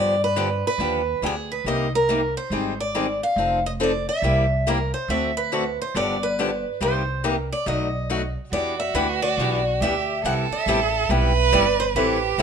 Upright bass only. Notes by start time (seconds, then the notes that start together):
Already playing: G2
0.78 D#2
1.22 D2
1.64 C2
2.50 G#1
3.36 F1
4.22 C2
5.08 D2
5.95 G1
6.81 C2
7.66 B1
8.52 E2
8.94 D2
9.37 B1
9.81 D2
10.24 C2
10.51 muted upright bass stroke
10.66 A1
11.09 B1
11.52 G1
11.95 A1
12.38 B1